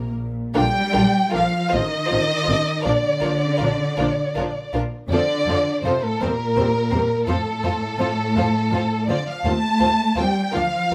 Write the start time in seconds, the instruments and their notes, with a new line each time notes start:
Already playing: double bass section A#1, cello section C3, viola section A#3, violin section A#4
0.16 cello section A#2
0.54 double bass section A#1, viola section D3 D4, cello section G3, violin section F4 A#4 G5
0.93 double bass section A#1, viola section D3 D4, violin section F4 A#4
1.30 viola section D3 D4, violin section F4 A#4
1.35 double bass section A#1, cello section F3, violin section F5
1.68 violin section F4 C5
1.72 double bass section A1, cello section D#3, viola section F3 C4, violin section D#5
2.06 violin section F4 C5
2.11 double bass section A1, viola section F3 C4
2.43 double bass section A1, violin section F4 C5
2.48 viola section F3 C4
2.82 double bass section A#1, cello section D3, viola section F3 D4, violin section F4 A#4 D5
3.20 double bass section A#1, viola section F3 D4, violin section F4 A#4
3.57 double bass section A#1, violin section F4 A#4
3.63 viola section F3 D4
3.97 double bass section A#1, viola section F3 D4, violin section F4 A#4
4.35 double bass section A#1, viola section F3 D4, violin section F4 A#4
4.74 double bass section A#1, viola section F3 D4, violin section F4 A#4
5.09 double bass section F2, cello section D3, viola section F3 C4, violin section F4 A4 D5
5.46 double bass section F2, viola section F3 C4, violin section F4 A4
5.83 double bass section F2, cello section C3, viola section F3 C4, violin section F4 A4 C5
6.03 cello section A2, violin section A4
6.21 double bass section E2, cello section A#2, viola section G3 C4, violin section C4 A#4 C5
6.56 double bass section E2, viola section G3 C4, violin section C4 C5
6.90 double bass section E2, viola section G3 C4, violin section C4 C5
7.26 double bass section F2, cello section A2, viola section F3 C4, violin section F4 A4 C5
7.63 double bass section F2, viola section F3 C4, violin section F4 C5
7.98 double bass section F2, viola section F3 C4, violin section F4 C5
8.35 double bass section F2, viola section F3 C4, violin section F4 C5
8.72 double bass section F2, viola section F3 C4, violin section F4 C5
9.08 double bass section F2, cello section D3, viola section F3 C4, violin section F4 C5 D5
9.28 cello section F3, violin section F5
9.45 double bass section D#2, viola section F3 C4, cello section A3, violin section F4 C5 A5
9.79 double bass section D#2, viola section F3 C4, violin section F4 C5
10.16 double bass section D#2, cello section G3, violin section F4 C5 G5
10.20 viola section F3 C4
10.52 double bass section D2, cello section F3, viola section F3 D4, violin section F4 A#4 F5
10.91 violin section A#4